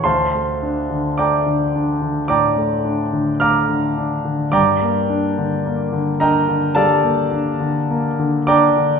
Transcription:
<<
  \new Staff \with { instrumentName = "Grand piano" } { \time 4/4 \key d \phrygian \tempo 4 = 54 <c'' f'' a'' c'''>4 <d'' g'' bes'' d'''>4 <d'' g'' bes'' d'''>4 <f'' bes'' d''' f'''>4 | <d'' g'' bes'' d'''>4. <bes' ees'' g'' bes''>8 <a' d'' f'' a''>4. <d'' g'' bes'' d'''>8 | }
  \new Staff \with { instrumentName = "Grand piano" } { \clef bass \time 4/4 \key d \phrygian d,16 a16 d'16 d16 a16 d16 d'16 d16 a,16 a16 d'16 d16 a16 d16 d'16 d16 | g,16 bes16 d'16 d16 bes16 d16 d'16 d16 g16 bes16 d'16 d16 bes16 d16 d'16 d16 | }
>>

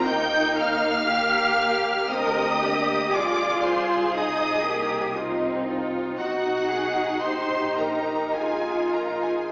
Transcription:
<<
  \new Staff \with { instrumentName = "Violin section" } { \time 3/4 \key ees \major \tempo 4 = 58 g'''8 f'''4. ees'''4 | d'''8 c'''8 ees'''4 r4 | fis''4 c'''8 bes''8 aes''8 bes''16 aes''16 | }
  \new Staff \with { instrumentName = "Viola section" } { \time 3/4 \key ees \major g''8 f''4. ees''4 | d''8 c''8 ees''4 r4 | fis'4 c''8 bes'8 aes'8 bes'16 aes'16 | }
  \new Staff \with { instrumentName = "Cello section" } { \time 3/4 \key ees \major ees'4 g'4 bes'8 g'8 | f'4 ees'8 g'8 f'8 ees'8~ | ees'2 f'4 | }
  \new Staff \with { instrumentName = "Violin section" } { \time 3/4 \key ees \major << { ees'4 g'4 g'4 | aes'2 ees'8 f'8 | fis'8 aes'8 g'4 f'4 | } \\ { bes4 bes4 c'8 bes8 | f'4 ees'8 bes8 c'4 | dis'2. | } >> }
  \new Staff \with { instrumentName = "Double bass section" } { \clef bass \time 3/4 \key ees \major ees,2 d,4 | c,2. | b,,4 bes,,4 bes,,4 | }
>>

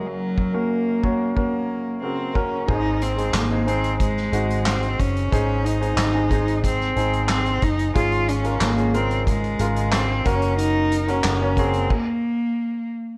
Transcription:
<<
  \new Staff \with { instrumentName = "Grand piano" } { \time 4/4 \key aes \mixolydian \tempo 4 = 91 <bes des' ges' bes'>8. <bes des' ges' bes'>8. <bes des' ges' des''>8 <bes des' ges' bes'>4 <des bes ges' bes'>8 <bes des' ges' bes'>8 | <aes c' ees' aes'>8. <aes c' ees' aes'>8 <aes c' ees' aes'>16 <aes c' ees' aes'>4 <aes c' ees' ges'>4~ <aes c' ees' ges'>16 r16 | <aes ees' aes' c''>8. <aes c' ees' aes'>8 <aes c' ees' aes'>16 <aes c' ees' aes'>4 <aes c' ees' aes'>4~ <aes c' ees' aes'>16 r16 | <aes des' f' aes'>8. <aes des' f' bes'>8 <aes des' f' aes'>16 <des aes f' bes'>4 <des aes f' bes'>4 <bes des' ges' bes'>8~ |
<bes des' ges' bes'>8. <bes des' ges' bes'>8 <bes des' ges' des''>16 <des bes ges' aes'>8 r2 | }
  \new Staff \with { instrumentName = "Grand piano" } { \clef bass \time 4/4 \key aes \mixolydian <ges,, ges,>2.~ <ges,, ges,>8 r8 | aes,4. r2 r8 | aes,4. r2 r8 | aes,4. r2 r8 |
r1 | }
  \new Staff \with { instrumentName = "Cello" } { \time 4/4 \key aes \mixolydian ges8. bes4~ bes16 bes4 c'8 des'8 | ees'8 c'8 bes8 c'8 aes4 c'8 des'8~ | des'8 ees'4. c'4 c'8 ees'8 | f'8 des'8 bes8 c'8 aes4 c'8 des'8 |
ees'8. des'8. c'8 bes4. r8 | }
  \new Staff \with { instrumentName = "Fingered electric bass" } { \clef bass \time 4/4 \key aes \mixolydian r1 | aes,,4 aes,,4. aes,,4 ges,,8 | aes,,4 aes,,4. aes,,4 ges,,8 | aes,,4 aes,,4. aes,,4 ges,,8~ |
ges,,4 ges,,4 r2 | }
  \new DrumStaff \with { instrumentName = "Drums" } \drummode { \time 4/4 r8 bd8 r8 bd8 bd4 r8 bd8 | <cymc bd>8 hh16 hh16 <hc hh sn>8 hh16 hh16 <hh bd>16 sn16 hh16 hh16 <hc hh sn>16 hh16 <hh bd>16 hh16 | <hh bd>8 hh16 hh16 <hc hh sn>8 <hh bd>16 hh16 <hh bd>16 sn16 hh16 hh16 <hc hh sn>16 hh16 <hh bd>16 hh16 | <hh bd>16 hh16 hh16 hh16 <hc hh sn>16 hh16 hh16 hh16 <hh bd>16 hh16 hh16 hh16 <hc hh sn>8 <hh bd>16 hh16 |
hh8 hh16 hh16 <hc hh sn>8 <hh bd>16 hh16 <cymc bd>4 r4 | }
>>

